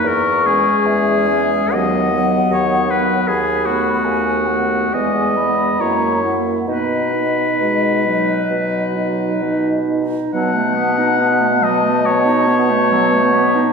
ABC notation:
X:1
M:4/4
L:1/16
Q:1/4=70
K:B
V:1 name="Flute"
c'4 e4 f8 | b4 g2 f2 g2 b2 a2 f2 | d12- d2 z2 | =a16 |]
V:2 name="Oboe"
A2 G6 d4 c2 B2 | G2 F6 d4 c2 z2 | B12- B2 z2 | f6 d2 c8 |]
V:3 name="Clarinet"
z2 C4 C2 B,2 B,4 B,2 | z2 B,4 B,2 B,2 B,2 E2 E2 | D2 D4 D4 D4 D2 | F, =A, B, D B, A, F, A, B, D B, A, F, A, B, D |]
V:4 name="French horn" clef=bass
z2 G,4 G,2 F,2 F,4 F,2 | z2 =A,4 A,2 G,2 G,2 ^A,2 A,2 | B,2 B,2 G,2 F,6 D4 | B,16 |]
V:5 name="Bassoon" clef=bass
E,,4 E,,4 D,,4 D,,4 | D,,4 D,,4 E,,4 F,,4 | B,,4 B,,4 B,,4 B,,4 | B,,16 |]